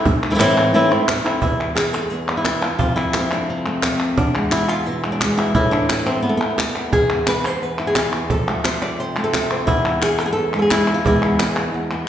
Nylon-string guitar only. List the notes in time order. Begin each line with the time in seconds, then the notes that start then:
0.06 muted nylon-string guitar stroke
0.30 E3 A3 C4 E4
0.35 E3 A3 C4 E4
0.40 A2 E3 A3 C4 E4
0.74 A2 E3 A3 C4 E4
0.91 A3 C4 E4
1.08 muted nylon-string guitar stroke
1.25 A3 C4 E4
1.42 E2 E4
1.75 G#4
1.93 A4
2.10 E2 G#4
2.30 B3
2.37 E4
2.47 B3
2.62 F4
2.79 F2 F3 A3 F4
2.83 C4
2.96 E4
3.17 C4
3.33 D4
3.49 C3 C4
3.67 A3
4.17 E2 D4
4.36 G#3
4.52 E4
4.69 F4
4.86 B2 E4
5.05 G#3
5.12 D4
5.23 G#3
5.37 E4
5.55 A2 E3 A3 E4
5.71 D4
5.91 A3
6.06 C4
6.22 E2 B3
6.29 A3
6.37 B3
6.60 A3
6.93 E2 G#4
7.11 E4
7.28 B4
7.45 C5
7.62 E2 B4
7.79 E4
7.87 G#4
8.14 E2
8.30 F3 A4
8.49 A3
8.65 C5
8.82 D5
8.99 C3 C5
9.18 A3
9.24 A4
9.51 C5
9.67 E2 E4
9.86 B3
10.02 G#4
10.19 A4
10.26 G#4
10.33 A4
10.37 E2
10.54 G#3
10.59 G#4 A4
10.71 E4
10.94 F4
11.05 E2 G#3 B3 E4
11.24 B3
11.58 B3
11.74 E2
11.92 B3